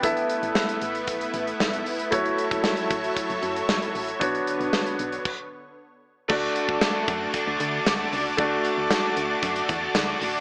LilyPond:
<<
  \new Staff \with { instrumentName = "Analog synth pad" } { \time 4/4 \key d \major \tempo 4 = 115 <a b e'>1 | <fis a' cis''>1 | <d b>2 r2 | <fis' d'' a'' d'''>1~ |
<fis' d'' a'' d'''>1 | }
  \new Staff \with { instrumentName = "Grand piano" } { \time 4/4 \key d \major <b e' a' e''>1 | <a e' fis' cis''>1 | <b d' fis' cis''>2 r2 | <a d' fis' d''>1 |
<a d' fis' d''>1 | }
  \new Staff \with { instrumentName = "Overdriven electric guitar" } { \time 4/4 \key d \major r1 | r1 | r1 | <d a d'>4 <d a d'>4 <d a d'>4. <a d'>8 |
<d a d'>4 <d a d'>4 <d a d'>4. <a d'>8 | }
  \new Staff \with { instrumentName = "FM bass" } { \clef bass \time 4/4 \key d \major a,,8 r16 a,,16 r8 a,,8 b,,8 a,,8 fis,,8 e,,8 | fis,,8 r16 fis,,16 r8 a,,8 r16 fis,,16 fis,8 fis,,8 a,,8 | b,,8 r16 b,,16 r8 b,,8 r2 | d,8 r16 d,16 r8 fis,8 r16 d,16 d8 d,8 cis,8 |
d,8 r16 d,16 r8 d,8 fis,8 e,8 d,8 a,,8 | }
  \new DrumStaff \with { instrumentName = "Drums" } \drummode { \time 4/4 <hh bd>16 hh16 hh16 hh16 sn16 hh16 hh16 hh16 <hh bd>16 hh16 hh16 hh16 sn16 hh16 hho16 hh16 | <hh bd>16 hh16 hh16 <hh bd>16 sn16 hh16 <hh bd>16 hh16 <hh bd>16 hh16 hh16 hh16 sn16 hh16 hho16 hh16 | <hh bd>16 hh16 hh16 hh16 sn16 hh16 hh16 hh16 <cymc bd>4 r4 | <cymc bd>8 hh16 bd16 <hh sn tamb>8 <hh bd>8 <hh bd>8 hh8 <hh sn tamb>8 hho8 |
<hh bd>8 hh8 <hh sn tamb>8 hh8 <hh bd>16 hh16 <hh bd>8 <hh sn tamb>8 hho8 | }
>>